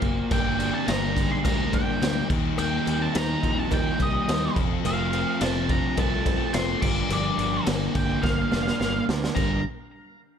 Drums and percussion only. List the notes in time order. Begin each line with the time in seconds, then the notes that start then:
0.02 kick, crash
0.31 kick, cowbell, crash
0.60 crash
0.88 snare, cowbell, crash
1.17 kick, crash
1.45 kick, cowbell, crash
1.73 kick, cowbell, crash
2.02 snare, cowbell, crash
2.30 kick, crash
2.58 cowbell, crash
2.86 cowbell, crash
3.15 snare, cowbell, crash
3.43 kick, crash
3.71 kick, cowbell, crash
3.99 kick, cowbell, crash
4.28 snare, cowbell, crash
4.56 kick, crash
4.85 cowbell, crash
5.13 cowbell, crash
5.41 snare, cowbell, crash
5.69 kick, crash
5.97 kick, cowbell, crash
6.26 kick, cowbell, crash
6.54 snare, cowbell, crash
6.82 kick, crash
7.10 cowbell, crash
7.39 cowbell, crash
7.66 snare, cowbell, crash
7.95 kick, crash
8.23 kick, snare, cowbell
8.52 snare, cowbell
8.67 snare
8.81 snare, cowbell
9.09 snare
9.24 snare
9.36 kick, cowbell, crash